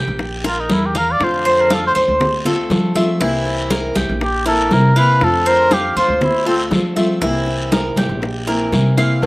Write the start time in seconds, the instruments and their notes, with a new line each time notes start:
Already playing: cuban tres G4
0.07 upright bass A#1
0.19 high bongo, high conga, long guiro
0.44 muted trumpet F4, cuban tres A#4, high bongo, high conga
0.60 muted trumpet D#4
0.70 upright bass E2, muted trumpet E4, low bongo, high conga, short guiro
0.86 muted trumpet G4
0.95 muted trumpet A#4, cuban tres F5, low bongo, high conga, short guiro
1.11 muted trumpet D5
1.19 upright bass F2, nylon-string guitar D3 A3 C4 F4, high bongo, high conga, long guiro
1.24 muted trumpet C5
1.45 cuban tres C5, high bongo, high conga
1.61 muted trumpet A#4
1.70 muted trumpet A4, cuban tres F5, high bongo, high conga, short guiro
1.87 muted trumpet C5
1.95 upright bass F2, cuban tres C5, short guiro
2.08 upright bass D2
2.20 muted nylon-string guitar stroke, high bongo, high conga, low conga, long guiro
2.45 nylon-string guitar A3 C4 F4, cuban tres A4, high bongo, high conga, low conga
2.70 nylon-string guitar D3 A3 C4 F4, upright bass F3, high bongo, low bongo, high conga, short guiro
2.95 nylon-string guitar A3 C4 F4, cuban tres E5, high bongo, high conga, short guiro
3.20 upright bass C2, nylon-string guitar C3 E3 A#3 C4 E4, cuban tres E4, high bongo, high conga, long guiro
3.46 high bongo, high conga
3.70 cuban tres A#4, high bongo, high conga, short guiro
3.95 upright bass C2, cuban tres G4, high conga, short guiro
4.09 upright bass A#1
4.21 muted trumpet G4, muted nylon-string guitar stroke, high bongo, high conga, long guiro
4.46 nylon-string guitar E3 A#3 C4 E4, muted trumpet A4, cuban tres A#4, high bongo, high conga
4.71 upright bass C3, nylon-string guitar E3 A#3 C4 E4, muted trumpet A#4, high bongo, low bongo, high conga, short guiro
4.96 nylon-string guitar E3 A#3 C4 E4, muted trumpet B4, cuban tres F5, high bongo, high conga, short guiro
5.21 upright bass F2, nylon-string guitar D3 A3 C4 F4, muted trumpet A4, high bongo, high conga, long guiro
5.46 muted trumpet A#4, cuban tres C5, high bongo, high conga
5.71 muted trumpet G4, cuban tres F5, high bongo, high conga, short guiro
5.96 upright bass F2, muted trumpet F4, cuban tres C5, short guiro
6.08 upright bass D2
6.21 muted trumpet E4, muted nylon-string guitar stroke, high bongo, high conga, low conga, long guiro
6.46 nylon-string guitar A3 C4 F4, muted trumpet C4, cuban tres A4, high bongo, high conga
6.71 nylon-string guitar D3 A3 C4 F4, upright bass F3, high bongo, low bongo, high conga, short guiro
6.96 nylon-string guitar A3 C4 F4, cuban tres E5, high bongo, high conga, short guiro
7.21 upright bass C2, nylon-string guitar C3 E3 A#3 C4 E4, cuban tres E4, high bongo, high conga, long guiro
7.47 high bongo, high conga
7.72 cuban tres A#4, high bongo, high conga, short guiro
7.96 upright bass C2, cuban tres G4, high conga, short guiro
8.09 upright bass A#1
8.21 muted nylon-string guitar stroke, high bongo, high conga, long guiro
8.47 nylon-string guitar E3 A#3 C4 E4, cuban tres A#4, high bongo, high conga
8.71 upright bass C3, nylon-string guitar E3 A#3 C4 E4, high bongo, low bongo, high conga, short guiro
8.97 nylon-string guitar E3 A#3 C4 E4, cuban tres F5, high bongo, short guiro
9.22 upright bass F2, nylon-string guitar D3 A3, high conga, long guiro